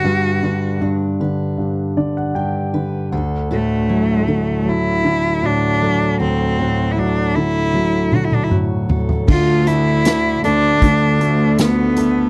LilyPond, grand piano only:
<<
  \new Staff \with { instrumentName = "Grand piano" } { \time 4/4 \key d \mixolydian \tempo 4 = 78 r2 r8 d''16 fis''16 g''4 | r1 | r1 | r1 | }
  \new Staff \with { instrumentName = "Grand piano" } { \clef bass \time 4/4 \key d \mixolydian <g, d>8 d8 g,8 d8 g,8 d8 g,8 d8 | d,8 a,8 fis8 d8 fis8 d8 a,8 fis8 | d,8 a,8 fis8 d8 fis8 d8 a,8 fis8 | d8 a8 d8 a8 d8 a8 d8 a8 | }
>>